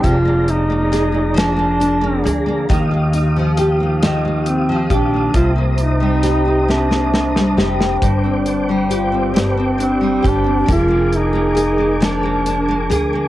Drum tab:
HH |x-x-x-x-x-x-|x-x-x-x-x-x-|x-x-x-------|x-x-x-x-x-x-|
SD |----o-o-----|------o-----|----o-oooooo|------o-----|
BD |o-----------|o---------o-|o-----------|o---------o-|

HH |x-x-x-x-x-x-|
SD |------o-----|
BD |o-----------|